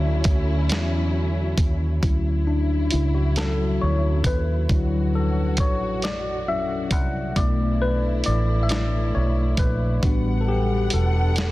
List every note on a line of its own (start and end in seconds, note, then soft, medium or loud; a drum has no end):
0.00 0.22 D2 loud
0.00 1.97 D3 medium
0.00 1.99 D3 medium
0.00 2.00 F#3 medium
0.00 1.98 C#4 medium
0.00 2.00 C#4 medium
0.00 2.00 E4 medium
0.00 1.99 F#4 medium
0.00 2.05 A4 medium
0.00 2.04 D5 medium
0.00 2.01 E5 medium
0.24 0.71 D2 medium
0.24 kick loud
0.24 closed hi-hat medium
0.69 1.55 E2 medium
0.69 snare loud
0.69 closed hi-hat medium
1.58 1.99 D#2 medium
1.58 kick medium
1.58 closed hi-hat medium
2.02 2.88 D2 medium
2.02 2.62 F#3 soft
2.02 7.32 F#3 medium
2.02 2.62 C#4 soft
2.02 4.67 E4 medium
2.02 2.62 E4 soft
2.02 kick loud
2.02 closed hi-hat medium
2.47 2.93 D4 medium
2.91 3.77 C#2 loud
2.91 3.02 E4 medium
2.91 closed hi-hat medium
3.15 3.37 F#4 medium
3.36 3.77 F#3 soft
3.36 3.77 C#4 soft
3.36 3.77 E4 soft
3.36 3.82 A4 medium
3.36 snare loud
3.36 closed hi-hat medium
3.81 4.22 D2 medium
3.81 4.27 C#5 medium
4.24 4.66 D#2 medium
4.24 5.17 B4 medium
4.24 kick medium
4.24 closed hi-hat medium
4.69 5.59 D2 medium
4.69 6.47 F#3 medium
4.69 7.33 D4 soft
4.69 6.47 E4 medium
4.69 7.34 F#4 medium
4.69 kick loud
4.69 closed hi-hat medium
5.15 5.56 A4 medium
5.57 6.92 A1 medium
5.57 6.05 C#5 medium
5.57 kick loud
5.57 closed hi-hat medium
6.02 6.49 D5 medium
6.02 snare loud
6.02 closed hi-hat medium
6.48 6.88 F#3 soft
6.48 6.88 C#4 soft
6.48 6.88 E4 soft
6.48 6.89 E5 medium
6.91 7.32 C2 medium
6.91 7.38 F#5 medium
6.91 kick medium
6.91 closed hi-hat medium
7.36 8.21 B1 medium
7.36 8.69 A3 soft
7.36 10.00 A3 medium
7.36 9.99 B3 soft
7.36 8.69 D4 medium
7.36 10.00 E4 medium
7.36 8.69 E4 medium
7.36 7.82 D5 medium
7.36 kick medium
7.36 closed hi-hat medium
7.82 8.27 B4 medium
8.24 9.11 A1 medium
8.24 8.64 D5 medium
8.24 closed hi-hat medium
8.63 8.70 E5 medium
8.69 9.10 A3 soft
8.69 9.10 D4 soft
8.69 9.10 E4 soft
8.69 9.10 C#5 soft
8.69 8.91 D5 medium
8.69 snare loud
8.69 closed hi-hat medium
9.15 9.55 B1 medium
9.15 9.56 C#5 medium
9.57 9.99 A#1 medium
9.57 10.37 B4 medium
9.57 kick medium
9.57 closed hi-hat medium
10.02 10.88 A1 medium
10.02 11.52 G3 medium
10.02 11.32 G3 medium
10.02 11.52 B3 medium
10.02 11.32 B3 soft
10.02 11.33 D4 medium
10.02 11.33 F#4 medium
10.02 11.52 F#5 medium
10.02 kick loud
10.02 closed hi-hat medium
10.41 10.47 A4 medium
10.48 10.94 G4 medium
10.90 11.52 E1 medium
10.90 11.52 A4 medium
10.90 closed hi-hat medium
11.36 snare loud
11.36 closed hi-hat medium